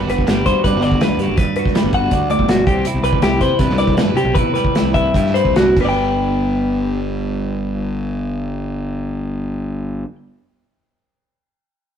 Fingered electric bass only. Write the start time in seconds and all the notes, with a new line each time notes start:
0.07 G1
0.26 G1
0.46 G2
0.64 G2
0.73 G1
1.00 G2
1.09 D2
1.18 G2
1.27 F#1
1.84 G1
2.11 D2
2.38 G1
2.67 C2
2.94 C2
3.02 C2
3.22 C2
3.40 C3
3.59 C3
3.67 C2
3.95 C3
4.05 G2
4.14 C3
4.24 B1
4.81 C2
5.14 G2
5.44 C2
5.77 G1